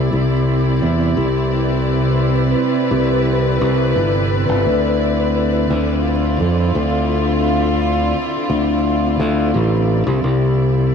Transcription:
Already playing: C3 C4 E4 D5
0.13 C2
0.82 E2
1.17 C2
1.42 B4
2.91 C2
3.61 C2
3.96 G1
4.49 G1
4.66 D2 D3
5.70 D2
6.00 F4
6.40 F2
6.75 D2
8.50 D2
9.19 D2
9.54 A1
10.07 C2
10.23 C2 C3

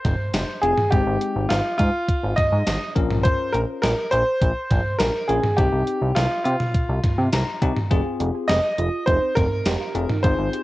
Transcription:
Already playing: C5
0.05 F1, kick, closed hi-hat, mid tom
0.34 F1, snare, closed hi-hat
0.62 F1 C4 F4 G#4, closed hi-hat
0.78 mid tom
0.91 G#1 G#3 C4 D#4 G4, kick, closed hi-hat
1.07 G#1
1.21 closed hi-hat
1.36 G#1
1.49 G#1 F4, snare, closed hi-hat
1.78 G#2 F4, kick, closed hi-hat
2.08 kick, closed hi-hat
2.23 G#1
2.36 D#5, kick, closed hi-hat, mid tom
2.52 G#2
2.67 G#1, snare, closed hi-hat
2.96 A#1 C#4 F4 A#4, kick, closed hi-hat
3.11 mid tom
3.23 C5, kick, closed hi-hat
3.53 A#1 A#4, closed hi-hat
3.82 A#1 A#4, snare, closed hi-hat
4.11 A#1 C5, closed hi-hat
4.41 A#1, kick, closed hi-hat
4.71 A#1, kick, closed hi-hat, mid tom
4.99 A#1 A#4, snare, closed hi-hat
5.28 A#1 C#4 F4 G#4 A#4, closed hi-hat
5.43 mid tom
5.57 C2 C4 D#4 G4, kick, closed hi-hat
5.73 C2
5.87 closed hi-hat
6.02 C2
6.15 C2 F4, snare, closed hi-hat
6.44 C3 F4, closed hi-hat
6.60 mid tom
6.74 kick, closed hi-hat
6.89 C2
7.04 kick, closed hi-hat, mid tom
7.18 C3
7.33 C2 A#5, snare, closed hi-hat
7.62 C2 C4 D#4 G4, kick, closed hi-hat
7.77 mid tom
7.91 F1 C4 F4 G#4, kick, closed hi-hat
8.06 G#4
8.20 F1 G4, closed hi-hat
8.35 G#4
8.48 F1 D#5, snare, closed hi-hat
8.78 F1 F4, closed hi-hat
9.06 F1 D#4 C5, kick, closed hi-hat
9.22 C4
9.35 F1 C4 A#4, kick, closed hi-hat, mid tom
9.65 F1 G4, snare, closed hi-hat
9.80 F4
9.95 F1 C4 F4 G#4, closed hi-hat
10.10 D#4, mid tom
10.23 G#1 C4 D#4 F4 G#4 C5, kick, closed hi-hat
10.39 G#1 G#4
10.53 G4, closed hi-hat

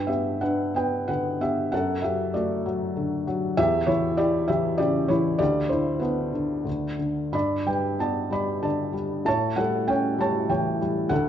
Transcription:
Already playing: G2 B4 G5
0.07 B3 G4 E5
0.41 D4 B4 F#5
0.74 B3 B4 G5
1.08 D3 B4 F#5
1.41 B3 G4 E5
1.72 F#2 A4 F#5
2.02 F#3 G4 E5
2.34 A3 F#4 D5
2.66 F#3
2.97 D3
3.27 F#3
3.57 E2 G4 E5
3.87 E3 E4 C#5
4.17 E4 G4 D5
4.48 E3 G4 E5
4.78 C#3 G4 D5
5.08 E3 E4 C#5
5.39 D2 G4 D5
5.69 D3 E4 C5
6.00 B3 D4 B4
6.33 D3
6.65 D2
6.99 D3
7.32 G2 D5 B5
7.66 G3 B4 G5
7.99 B3 D5 A5
8.31 G3 D5 B5
8.62 D3 D5 A5
8.93 G3
9.25 A2 C#5 A5
9.56 G3 A4 F#5
9.87 C#4 C#5 G5
10.18 G3 C#5 A5
10.49 E3 C#5 G5
10.81 G3
11.09 D2 A4 F#5

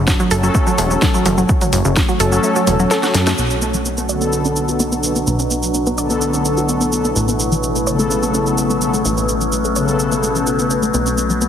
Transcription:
Already playing: F#1 A3 C#4 F#4 C#5
0.07 F#3, kick, snare, shaker
0.20 F#3, shaker
0.31 F#1 F#3 C#4 A4, open hi-hat, shaker
0.43 F#3, shaker
0.55 A3, kick, shaker
0.67 F#3, shaker
0.78 E1 A3, open hi-hat, shaker
0.91 C#4, shaker
1.02 F#3, kick, snare, shaker
1.14 F#3, shaker
1.26 F#1 F#3, mid tom, open hi-hat, shaker
1.38 F#3, shaker
1.49 F#3, kick, shaker
1.61 F#3, mid tom, open hi-hat, shaker
1.73 F#1 F#3, open hi-hat, shaker
1.85 F#1 C#3, shaker
1.96 F#3, kick, snare, shaker
2.09 F#3, shaker
2.20 F#1 F#3 C#4 A4, open hi-hat, shaker
2.32 F#3, shaker
2.44 A3, shaker
2.56 F#3, shaker
2.67 E1 A3, mid tom, open hi-hat, shaker
2.79 F#3, shaker
2.91 A4, snare, shaker
3.03 F#4, snare, shaker
3.14 F#2 F#3, snare, open hi-hat, shaker
3.27 A3, snare, open hi-hat, shaker
3.38 B1 B2 F#3 A3 B3 D4 F#4 B4, shaker
3.50 C#4, shaker
3.62 B3, shaker
3.74 F#3, shaker
3.85 B3, shaker
3.98 B3, shaker
4.09 D3 B3 A4 D5, shaker
4.21 B3, shaker
4.33 D4, shaker
4.45 C#4, shaker
4.56 D4, shaker
4.68 F#4, shaker
4.80 B3, shaker
4.92 B3, shaker
5.04 D3 B3 A4, shaker
5.16 B3, shaker
5.27 B1 B3 E4, shaker
5.39 C#4, shaker
5.51 B3, shaker
5.63 F#3, shaker
5.74 B3, shaker
5.86 B3, shaker
5.98 D3 B3 A4 D5, shaker
6.10 B3, shaker
6.22 D4, shaker
6.34 C#4, shaker
6.45 D4, shaker
6.57 F#4, shaker
6.69 B3, shaker
6.81 B3, shaker
6.92 D3 B3 A4, shaker
7.05 B3, shaker
7.16 A1 A3 C#4, shaker
7.28 B3, shaker
7.40 A3, shaker
7.52 E3, shaker
7.63 A3, shaker
7.75 A3, shaker
7.87 C#3 B3 A4 C#5, shaker
7.99 A3, shaker
8.11 C#4, shaker
8.23 B3, shaker
8.34 C#4, shaker
8.46 E4, shaker
8.58 A3, shaker
8.70 A3, shaker
8.82 C#3 A3 B3 A4, shaker
8.94 A3, shaker
9.05 A1 A3 F#4, shaker
9.17 B3, shaker
9.29 A3, shaker
9.41 E3, shaker
9.52 A3, shaker
9.65 A3, shaker
9.76 C#3 B3 A4 C#5, shaker
9.88 A3, shaker
10.00 C#4, shaker
10.12 B3, shaker
10.23 A3, shaker
10.35 E3, shaker
10.47 E4, shaker
10.59 B3, shaker
10.70 C#4, shaker
10.83 A3, shaker
10.94 B1 B3 D4, shaker
11.06 C#4, shaker
11.18 B3, shaker
11.30 F#3, shaker
11.41 B3, shaker

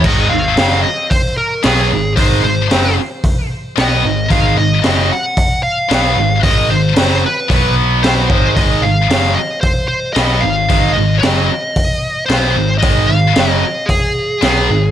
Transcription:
0.03 G#1 G#2 D#3 G#3 D#5, kick, crash
0.30 G#1 G#2 D#3 F5
0.56 F#1 F#2 C#3 F#3, snare, open hi-hat
0.83 D#5
1.10 C5, kick, open hi-hat
1.38 A#4
1.63 B1 B2 F#3 B3 G#4, snare, open hi-hat
1.90 G#1 G#2 D#3
2.16 G#1 G#2 D#3 G#3 C5, kick, open hi-hat
2.43 G#1 G#2 D#3 C5
2.70 F#1 F#2 C#3 F#3, snare, open hi-hat
3.24 kick, open hi-hat
3.76 B1 B2 F#3 B3 D#5, snare, open hi-hat
4.03 G#1 G#2 D#3
4.29 G#1 G#2 D#3 G#3 F5, kick, open hi-hat
4.55 G#1 G#2 D#3 D#5
4.82 F#1 F#2 C#3 F#3, snare, open hi-hat
5.13 F#5
5.37 kick, open hi-hat
5.63 F5
5.89 B1 B2 F#3 B3, snare, open hi-hat
6.16 G#1 G#2 D#3
6.43 G#1 G#2 D#3 G#3 D#5, kick, open hi-hat
6.69 G#1 G#2 D#3 C5
6.96 F#1 F#2 C#3 F#3, snare, open hi-hat
7.26 B4
7.49 B1 B2 F#3 B3, kick, open hi-hat
8.03 C5, snare, open hi-hat
8.30 G#1 G#2 D#3 G#3, kick
8.56 G#1 G#2 D#3 G#3 D#5, kick, open hi-hat
8.82 G#1 G#2 D#3 F5
9.10 F#1 F#2 C#3 F#3, snare, open hi-hat
9.35 D#5
9.61 C5, kick, open hi-hat
9.88 C5
10.13 B1 B2 F#3 B3 D#5, snare, open hi-hat
10.40 G#1 G#2 D#3 F5
10.69 G#1 G#2 D#3 G#3, kick, open hi-hat
10.92 G#2 D#3 D#5
10.98 G#1
11.19 F#2 C#3 F#3 D#5, open hi-hat
11.23 F#1, snare
11.76 kick, open hi-hat
12.26 B1 B2 F#3 C5, open hi-hat
12.30 B3, snare
12.56 G#1 G#2 D#3
12.78 G#2 D#5
12.82 G#1 D#3 G#3, kick, open hi-hat
13.05 G#2 D#3 F5
13.09 G#1
13.36 F#1 F#2 C#3 F#3, snare, open hi-hat
13.50 D#5
13.59 D#5
13.86 G#4, kick, open hi-hat
14.41 B1 B2 F#3 B3, snare, open hi-hat
14.68 G#1 G#2 D#3

